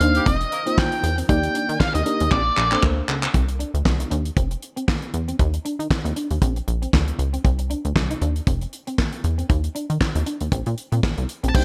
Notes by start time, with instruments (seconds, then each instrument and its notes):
Already playing: string machine C3 D#3 A#3 D5, lead electric guitar F5
0.00 analog synth bass D#2, fm electric piano A#3 D4 D#4 C5, clean electric guitar D4, closed hi-hat
0.15 horn section G3 G4, closed hi-hat
0.25 analog synth bass F1, string machine F3 C4 A#4, clean electric guitar C4, lead electric guitar D#5, kick, closed hi-hat
0.41 muted clean electric guitar stroke, closed hi-hat
0.52 horn section A#3 A#4, closed hi-hat
0.66 fm electric piano A#3 D#4 F4 C5, clean electric guitar C4, closed hi-hat
0.77 clean electric guitar A#3, lead electric guitar G5, kick, snare, clap
0.92 muted clean electric guitar stroke, closed hi-hat
1.03 analog synth bass E2, closed hi-hat
1.18 clean electric guitar C4, closed hi-hat
1.29 analog synth bass D#2, string machine D#3 A#3 G4, fm electric piano A#3 D#4 G4 D5, clean electric guitar D#4, lead electric guitar G5, kick, closed hi-hat
1.43 muted clean electric guitar stroke, closed hi-hat
1.54 clean electric guitar D4, closed hi-hat
1.69 analog synth bass D#3, closed hi-hat
1.80 lead electric guitar F5, muted clean electric guitar stroke, kick, snare, clap
1.94 analog synth bass D#2, clean electric guitar D#4, lead electric guitar D#5, closed hi-hat
2.05 fm electric piano A#3 D#4 G4 A#4, clean electric guitar D4, closed hi-hat
2.20 analog synth bass D#2, closed hi-hat
2.31 analog synth bass A#1, string machine A#3 A4, clean electric guitar C4, lead electric guitar D5, kick, clap
2.46 muted clean electric guitar stroke
2.57 analog synth bass A#1, clap
2.71 fm electric piano A#3 D4 A4 C5, clean electric guitar C4, clap
2.83 analog synth bass D2, clean electric guitar A#3, kick, clap
2.97 muted clean electric guitar stroke
3.09 analog synth bass C#2, clap
3.23 clean electric guitar C4, clap
3.33 analog synth bass C2, clean electric guitar C4, kick, closed hi-hat
3.48 muted clean electric guitar stroke, closed hi-hat
3.59 clean electric guitar D4, closed hi-hat
3.74 analog synth bass D2, closed hi-hat
3.85 analog synth bass C2, muted clean electric guitar stroke, kick, snare, clap
4.00 clean electric guitar D#4, closed hi-hat
4.10 analog synth bass D#2, clean electric guitar D4, closed hi-hat
4.25 closed hi-hat
4.37 analog synth bass F1, clean electric guitar C4, kick, closed hi-hat
4.51 muted clean electric guitar stroke, closed hi-hat
4.62 closed hi-hat
4.76 clean electric guitar C4, closed hi-hat
4.88 clean electric guitar A#3, kick, snare, clap
5.02 muted clean electric guitar stroke, closed hi-hat
5.14 analog synth bass E2, closed hi-hat
5.28 clean electric guitar C4, closed hi-hat
5.39 analog synth bass D#2, clean electric guitar D#4, kick, closed hi-hat
5.54 muted clean electric guitar stroke, closed hi-hat
5.65 clean electric guitar D4, closed hi-hat
5.79 analog synth bass D#3, closed hi-hat
5.91 muted clean electric guitar stroke, kick, snare, clap
6.05 analog synth bass D#2, clean electric guitar D#4, closed hi-hat
6.16 clean electric guitar D4, closed hi-hat
6.31 analog synth bass D#2, closed hi-hat
6.42 analog synth bass A#1, clean electric guitar C4, kick, closed hi-hat
6.56 muted clean electric guitar stroke, closed hi-hat
6.68 analog synth bass A#1, closed hi-hat
6.82 clean electric guitar C4, closed hi-hat
6.93 analog synth bass D2, clean electric guitar A#3, kick, snare, clap
7.07 muted clean electric guitar stroke, closed hi-hat
7.19 analog synth bass C#2, closed hi-hat
7.33 clean electric guitar C4, closed hi-hat
7.44 analog synth bass C2, clean electric guitar C4, kick, closed hi-hat
7.59 muted clean electric guitar stroke, closed hi-hat
7.70 clean electric guitar D4, closed hi-hat
7.85 analog synth bass D2, closed hi-hat
7.95 analog synth bass C2, muted clean electric guitar stroke, kick, snare, clap
8.10 clean electric guitar D#4, closed hi-hat
8.21 analog synth bass D#2, clean electric guitar D4, closed hi-hat
8.36 closed hi-hat
8.47 analog synth bass F1, clean electric guitar C4, kick, closed hi-hat
8.61 muted clean electric guitar stroke, closed hi-hat
8.73 closed hi-hat
8.87 clean electric guitar C4, closed hi-hat
8.98 clean electric guitar A#3, kick, snare, clap
9.13 muted clean electric guitar stroke, closed hi-hat
9.24 analog synth bass E2, closed hi-hat
9.38 clean electric guitar C4, closed hi-hat
9.49 analog synth bass D#2, clean electric guitar D#4, kick, closed hi-hat
9.64 muted clean electric guitar stroke, closed hi-hat
9.75 clean electric guitar D4, closed hi-hat
9.90 analog synth bass D#3, closed hi-hat
10.00 muted clean electric guitar stroke, kick, snare, clap
10.15 analog synth bass D#2, clean electric guitar D#4, closed hi-hat
10.26 clean electric guitar D4, closed hi-hat
10.41 analog synth bass D#2, closed hi-hat
10.52 analog synth bass A#1, clean electric guitar C4, kick, closed hi-hat
10.66 analog synth bass A#2, muted clean electric guitar stroke, closed hi-hat
10.78 closed hi-hat
10.92 analog synth bass A#2, clean electric guitar C4, closed hi-hat
11.03 analog synth bass A#1, clean electric guitar A#3, kick, snare, clap
11.18 analog synth bass C2, muted clean electric guitar stroke, closed hi-hat
11.29 closed hi-hat
11.43 analog synth bass A#1, clean electric guitar C4, closed hi-hat
11.49 lead electric guitar A5
11.54 analog synth bass C2, fm electric piano A#3 D4 D#4 G4 C5, lead electric guitar G5, kick, crash